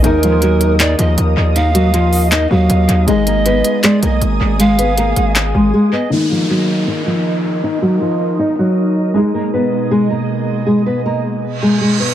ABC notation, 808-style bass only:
X:1
M:4/4
L:1/8
Q:1/4=158
K:Ebm
V:1 name="808-style bass" clef=bass
E,,4- E,, E,, E,, E,,- | E,,4- E,, E,, E,, E,, | A,,,3 z2 C,, A,,, A,,,- | A,,,3 A,,,2 A,,, z2 |
z8 | z8 | z8 | z8 |]